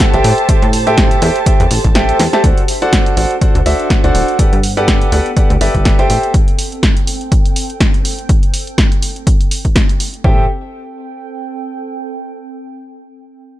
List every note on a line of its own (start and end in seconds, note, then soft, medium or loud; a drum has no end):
0.00 0.10 G4 loud
0.00 2.44 G4 medium
0.00 0.10 A4 medium
0.00 2.45 A4 medium
0.00 0.10 C5 medium
0.00 4.39 C5 medium
0.00 0.10 E5 medium
0.00 0.10 F#5 loud
0.00 2.45 A5 medium
0.00 3.23 A5 medium
0.00 kick loud
0.00 snare loud
0.00 closed hi-hat loud
0.14 0.20 A1 loud
0.14 0.46 G4 medium
0.14 0.46 A4 medium
0.14 0.46 C5 medium
0.14 0.46 E5 medium
0.14 0.46 G5 loud
0.14 closed hi-hat soft
0.24 0.33 A2 loud
0.24 open hi-hat loud
0.38 closed hi-hat soft
0.49 0.65 G4 medium
0.49 0.65 A4 medium
0.49 0.65 C5 medium
0.49 0.65 E5 medium
0.49 0.65 G5 medium
0.49 kick loud
0.49 closed hi-hat loud
0.62 1.15 A2 medium
0.62 closed hi-hat soft
0.73 open hi-hat loud
0.87 1.19 G4 loud
0.87 1.19 A4 loud
0.87 1.19 C5 medium
0.87 1.19 E5 loud
0.87 1.19 G5 loud
0.87 closed hi-hat soft
0.98 kick loud
0.98 snare loud
0.98 closed hi-hat loud
1.11 closed hi-hat soft
1.22 1.30 E2 medium
1.22 1.38 G4 medium
1.22 1.38 A4 medium
1.22 1.38 C5 medium
1.22 1.38 E5 medium
1.22 1.38 G5 medium
1.22 open hi-hat loud
1.36 closed hi-hat soft
1.46 1.62 G4 medium
1.46 1.62 A4 medium
1.46 1.62 C5 medium
1.46 1.62 E5 medium
1.46 1.62 G5 medium
1.46 kick loud
1.46 closed hi-hat loud
1.60 1.67 E2 medium
1.60 closed hi-hat soft
1.71 1.79 A1 medium
1.71 open hi-hat loud
1.84 2.13 A1 loud
1.84 kick medium
1.84 closed hi-hat soft
1.95 2.19 G4 medium
1.95 2.19 A4 medium
1.95 2.19 C5 medium
1.95 2.19 E5 medium
1.95 2.19 G5 loud
1.95 snare loud
1.95 closed hi-hat loud
2.09 closed hi-hat soft
2.20 2.28 E2 medium
2.20 snare medium
2.20 open hi-hat loud
2.33 2.42 G4 medium
2.33 2.42 A4 medium
2.33 2.42 C5 medium
2.33 2.42 E5 medium
2.33 2.42 A5 loud
2.33 snare medium
2.33 closed hi-hat soft
2.44 2.52 D2 medium
2.44 5.08 D4 medium
2.44 2.60 F#4 medium
2.44 2.60 A4 medium
2.44 2.60 C5 medium
2.44 2.60 D5 medium
2.44 2.60 F#5 medium
2.44 kick loud
2.44 closed hi-hat medium
2.58 closed hi-hat soft
2.68 open hi-hat loud
2.82 3.15 F#4 medium
2.82 3.15 A4 medium
2.82 3.15 C5 medium
2.82 3.15 D5 medium
2.82 3.15 F#5 loud
2.82 6.10 F#5 medium
2.82 closed hi-hat soft
2.93 kick loud
2.93 snare loud
2.93 closed hi-hat loud
3.06 closed hi-hat soft
3.17 3.25 A1 medium
3.17 3.33 F#4 medium
3.17 3.33 A4 medium
3.17 3.33 C5 medium
3.17 3.33 D5 medium
3.17 3.33 F#5 medium
3.17 open hi-hat loud
3.31 closed hi-hat soft
3.41 3.58 F#4 medium
3.41 3.58 A4 medium
3.41 3.58 C5 medium
3.41 3.58 D5 medium
3.41 3.58 F#5 medium
3.41 kick loud
3.41 closed hi-hat medium
3.55 3.62 D2 loud
3.55 closed hi-hat soft
3.66 3.74 D2 medium
3.66 4.01 F#4 loud
3.66 4.01 A4 medium
3.66 4.01 C5 medium
3.66 4.01 D5 medium
3.66 4.01 E5 loud
3.66 open hi-hat loud
3.80 closed hi-hat soft
3.90 kick loud
3.90 snare loud
3.90 closed hi-hat medium
4.04 4.11 D2 loud
4.04 4.36 F#4 medium
4.04 4.37 A4 medium
4.04 4.37 C5 medium
4.04 4.37 D5 medium
4.04 4.37 F#5 medium
4.04 closed hi-hat soft
4.15 4.23 D1 loud
4.15 open hi-hat loud
4.28 closed hi-hat soft
4.39 6.10 B3 medium
4.39 4.55 G4 medium
4.39 4.55 A4 medium
4.39 4.55 B4 medium
4.39 4.55 D5 medium
4.39 4.55 F#5 medium
4.39 kick loud
4.39 closed hi-hat medium
4.53 5.06 G2 medium
4.53 closed hi-hat soft
4.63 open hi-hat loud
4.68 10.24 A4 medium
4.77 5.10 G4 medium
4.77 5.10 A4 medium
4.77 5.10 B4 medium
4.77 5.10 D5 medium
4.77 5.10 F#5 loud
4.77 closed hi-hat soft
4.88 kick loud
4.88 snare loud
4.88 closed hi-hat medium
5.02 closed hi-hat soft
5.12 5.21 D2 medium
5.12 5.28 G4 medium
5.12 5.28 A4 medium
5.12 5.28 B4 medium
5.12 5.28 D5 medium
5.12 5.28 F#5 medium
5.12 open hi-hat loud
5.26 closed hi-hat soft
5.37 5.53 G4 medium
5.37 5.53 A4 medium
5.37 5.53 B4 medium
5.37 5.53 D5 medium
5.37 5.53 F#5 medium
5.37 kick loud
5.37 closed hi-hat medium
5.50 5.57 D2 medium
5.50 closed hi-hat soft
5.61 5.69 G1 medium
5.61 5.96 G4 loud
5.61 5.96 A4 medium
5.61 5.96 B4 medium
5.61 5.96 D5 medium
5.61 5.96 E5 loud
5.61 open hi-hat loud
5.75 6.03 G1 loud
5.75 kick medium
5.75 closed hi-hat soft
5.85 kick loud
5.85 snare loud
5.85 closed hi-hat medium
5.99 6.32 G4 medium
5.99 6.32 A4 medium
5.99 6.32 C5 medium
5.99 6.32 E5 medium
5.99 6.32 G5 loud
5.99 closed hi-hat soft
6.10 6.18 A1 medium
6.10 10.23 C4 medium
6.10 open hi-hat loud
6.23 10.24 G5 medium
6.23 closed hi-hat soft
6.34 kick loud
6.34 closed hi-hat medium
6.48 closed hi-hat soft
6.59 open hi-hat loud
6.72 closed hi-hat soft
6.83 kick loud
6.83 snare loud
6.83 closed hi-hat medium
6.97 closed hi-hat soft
7.07 open hi-hat loud
7.21 closed hi-hat soft
7.32 kick loud
7.32 closed hi-hat medium
7.45 closed hi-hat soft
7.56 open hi-hat loud
7.70 closed hi-hat soft
7.80 kick loud
7.80 snare loud
7.80 closed hi-hat medium
7.94 closed hi-hat soft
8.05 open hi-hat loud
8.19 closed hi-hat soft
8.29 kick loud
8.29 closed hi-hat medium
8.43 closed hi-hat soft
8.54 open hi-hat loud
8.67 closed hi-hat soft
8.78 kick loud
8.78 snare loud
8.78 closed hi-hat medium
8.92 closed hi-hat soft
9.02 open hi-hat loud
9.16 closed hi-hat soft
9.27 kick loud
9.27 closed hi-hat medium
9.41 closed hi-hat soft
9.51 open hi-hat loud
9.65 kick medium
9.65 closed hi-hat soft
9.76 kick loud
9.76 snare loud
9.76 closed hi-hat medium
9.89 closed hi-hat soft
10.00 open hi-hat loud
10.14 closed hi-hat soft
10.24 10.47 A1 loud
10.24 12.16 C4 medium
10.24 10.43 G4 medium
10.24 10.43 A4 medium
10.24 10.43 C5 medium
10.24 10.43 E5 medium
10.24 10.43 G5 loud
10.24 kick loud
10.32 12.15 A4 medium
10.40 12.16 G5 medium